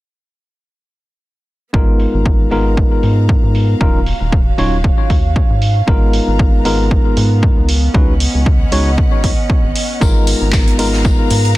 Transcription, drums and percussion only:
1.74 kick
2.00 open hi-hat
2.26 kick
2.51 open hi-hat
2.77 kick
3.03 open hi-hat
3.29 kick
3.55 open hi-hat
3.81 kick
4.06 open hi-hat
4.32 kick
4.58 open hi-hat
4.84 kick
5.10 kick, open hi-hat
5.36 kick
5.62 open hi-hat
5.88 kick
6.13 open hi-hat
6.39 kick
6.65 open hi-hat
6.91 kick
7.17 open hi-hat
7.43 kick
7.69 open hi-hat
7.94 kick
8.20 open hi-hat
8.46 kick
8.72 open hi-hat
8.98 kick
9.24 kick, open hi-hat
9.50 kick
9.76 open hi-hat
10.01 kick, tambourine
10.27 open hi-hat, tambourine
10.53 kick, snare, clap, tambourine
10.68 closed hi-hat
10.79 open hi-hat, tambourine
10.93 snare
11.05 kick, tambourine
11.30 open hi-hat, tambourine
11.45 closed hi-hat

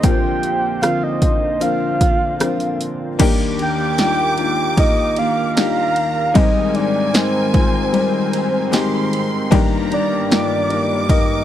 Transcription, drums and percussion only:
0.03 kick, closed hi-hat
0.43 closed hi-hat
0.83 cross-stick, closed hi-hat
1.22 kick, closed hi-hat
1.61 closed hi-hat
2.01 kick, closed hi-hat
2.40 cross-stick, closed hi-hat
2.60 closed hi-hat
2.81 closed hi-hat
3.19 kick, crash, ride
3.59 ride
3.98 snare, ride
4.38 ride
4.77 kick, ride
5.16 ride
5.57 snare, ride
5.96 ride
6.35 kick, ride
6.75 ride
7.14 snare, ride
7.54 kick, ride
7.94 ride
8.33 ride
8.73 snare, ride
9.13 ride
9.52 kick, ride
9.92 ride
10.32 snare, ride
10.70 ride
11.09 kick, ride

